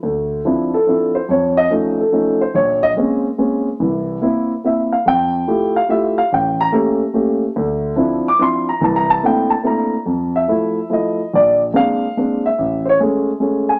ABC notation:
X:1
M:3/4
L:1/16
Q:"Swing" 1/4=144
K:F
V:1 name="Grand piano"
z6 A4 c2 | ^c2 _e2 z2 A4 =c2 | _d2 _e2 z8 | z8 e2 f2 |
g6 f2 e2 f2 | g2 b2 z8 | z6 d'2 c'2 b2 | (3a2 b2 a2 g2 a2 b3 z |
z2 e6 _e4 | d2 z2 f6 e2- | e2 [c^c]2 z6 ^g2 |]
V:2 name="Grand piano"
D,,4 [F,CDE]2 z2 [F,CDE]2 z2 | F,,4 [F,A,^C_E]2 z2 [F,A,CE]2 z2 | B,,,4 [_A,B,C_D]2 z2 [A,B,CD]2 z2 | [C,,E,]4 [B,CE]2 z2 [B,CE]2 z2 |
F,,4 [A,EFG]2 z2 [A,EFG]2 z2 | A,,,4 [A,B,^CG]2 z2 [A,B,CG]2 z2 | D,,4 [F,CDE]2 z2 [F,CDE]2 z2 | [C,,E,]4 [A,B,CDE]2 z2 [A,B,CDE]2 z2 |
F,,4 [F,A,E]2 z2 [F,A,E]2 z2 | B,,,4 [_A,B,CD]2 z2 [A,B,CD]2 z2 | A,,,4 [^G,A,^C]2 z2 [G,A,C]2 z2 |]